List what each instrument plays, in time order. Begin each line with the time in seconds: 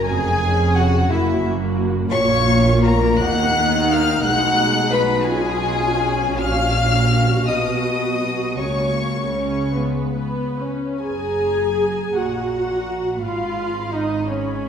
0.06 double bass section F1, cello section F2, violin section G#4 G#5
0.42 viola section C#4 G#4
0.77 violin section F#4 F#5
1.10 double bass section F#1, cello section F#2, viola section A#3 F#4, violin section E4 E5
1.44 viola section A#3 F#4
2.09 double bass section A#1, cello section A#2, viola section A#3 F4, violin section C#5 C#6
2.84 violin section A#4 A#5
3.21 double bass section D#2, cello section D#3, viola section D#4, violin section F#5 F#6
3.91 violin section F5 F6
4.23 double bass section B1, cello section B2, viola section G#3, violin section F#5 F#6
4.91 violin section B4 B5
5.26 viola section C#4 F4, violin section G#4 G#5
6.38 double bass section A#1, cello section A#2, viola section F#4, violin section F5 F6
7.46 double bass section B1, cello section B2, viola section B3, violin section D#5 D#6
8.57 double bass section C#2, cello section C#3, viola section A#3, violin section C#5 C#6
9.34 viola section C#4, violin section C#5
9.73 viola section G#3 B3, violin section B4
10.15 viola section B3
10.59 viola section C#4
11.00 double bass section F#1, cello section F#2, viola section G#4, violin section G#5 A#5
12.15 double bass section A#1, cello section A#2, viola section F#4, violin section F#5 A#5
13.22 double bass section G#1, cello section G#2, viola section F4, violin section F5 B5
13.93 viola section D#4, violin section D#5
14.28 viola section C#4, violin section C#5 B5